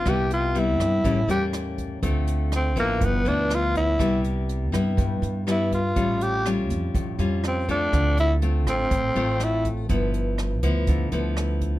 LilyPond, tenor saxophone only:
\new Staff \with { instrumentName = "Tenor saxophone" } { \time 4/4 \key c \major \tempo 4 = 122 g'8 f'8 e'4. g'8 r4 | r4 c'8 bes8 b8 d'8 f'8 e'8~ | e'8 r2 r8 e'8 f'8~ | f'8 g'8 r2 bis8 d'8~ |
d'8 e'8 r8 c'4. e'8 r8 | r1 | }